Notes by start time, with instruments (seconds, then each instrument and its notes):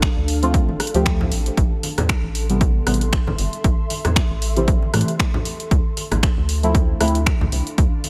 Already playing: ambient pad D4 A4 F5
0.02 finger snap, kick, closed hi-hat
0.17 analog synth bass D2
0.28 open hi-hat
0.42 synth stab F3 A3 C4 F4, closed hi-hat
0.54 kick, closed hi-hat
0.69 analog synth bass A1, high conga
0.80 cross-stick, open hi-hat
0.87 closed hi-hat
0.94 analog synth bass D2, synth stab F3 A3 C4 G4, closed hi-hat
1.06 finger snap, kick, closed hi-hat
1.21 low conga
1.32 analog synth bass A1, open hi-hat
1.46 closed hi-hat
1.57 analog synth bass A1, kick, closed hi-hat
1.80 ambient pad C6, open hi-hat, high conga
1.98 analog synth bass E2, cross-stick, closed hi-hat, low conga
2.05 ambient pad E5, finger snap, kick, closed hi-hat
2.24 analog synth bass A1
2.35 open hi-hat
2.49 synth stab C3 E3 G3 B3, closed hi-hat
2.61 kick, closed hi-hat
2.86 analog synth bass A1, synth stab C3 E3 G3 B3, cross-stick, open hi-hat
2.94 closed hi-hat
3.01 closed hi-hat
3.13 finger snap, kick, closed hi-hat
3.27 analog synth bass A1, high conga, low conga
3.38 analog synth bass G1, open hi-hat
3.53 closed hi-hat
3.64 analog synth bass A1, kick, closed hi-hat
3.90 open hi-hat, high conga
4.05 analog synth bass E2, cross-stick, closed hi-hat, low conga
4.16 finger snap, kick, closed hi-hat
4.31 analog synth bass A1
4.42 open hi-hat
4.56 synth stab C3 E3 G3 C4, closed hi-hat
4.68 kick, closed hi-hat
4.82 high conga
4.93 analog synth bass A2, synth stab C3 E3 G3 A3, cross-stick, open hi-hat
5.01 closed hi-hat
5.08 closed hi-hat
5.19 finger snap, kick, closed hi-hat
5.34 low conga
5.45 open hi-hat
5.60 closed hi-hat
5.71 analog synth bass D2, ambient pad D4, kick, closed hi-hat
5.97 open hi-hat, high conga
6.11 analog synth bass A1, cross-stick, closed hi-hat, low conga
6.23 finger snap, kick, closed hi-hat
6.38 analog synth bass D2
6.43 ambient pad A4
6.49 open hi-hat
6.63 synth stab F3 A3 C4 E4, closed hi-hat
6.75 kick, closed hi-hat
6.95 ambient pad F5
7.00 analog synth bass D2, synth stab F3 A3 C4 E4, cross-stick, open hi-hat
7.08 closed hi-hat
7.15 closed hi-hat
7.26 finger snap, kick, closed hi-hat
7.41 analog synth bass D2, high conga, low conga
7.52 analog synth bass C2, open hi-hat
7.67 closed hi-hat
7.78 analog synth bass D2, kick, closed hi-hat
8.04 open hi-hat, high conga